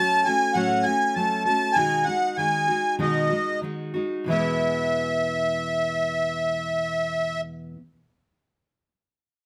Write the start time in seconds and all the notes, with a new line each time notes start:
Already playing: F#3 A3 C#4 A5
0.00 F#4
0.25 A3 C#4 F#4 G#5
0.54 A2 F#3 A3 C#4 F#4 F#5
0.83 C#4 F#4 G#5
0.88 A3
1.15 F#3 A3 C#4 A5
1.19 F#4
1.45 C#4 F#4 A5
1.49 A3
1.72 B2 D#3 G#5
1.77 G#3 D#4 F#4
2.04 D#4 F#4 F#5
2.09 G#3
2.37 D#3 G#3 D#4 F#4 G#5
2.68 G#3 D#4 F#4
2.99 B2 D#3 G#3 D#4 F#4 D#5
3.29 G#3 D#4 F#4
3.62 D#3 G#3 D#4 F#4
3.94 G#3 D#4 F#4
4.24 E2 B2 E3
4.30 G#3 B3 E4 E5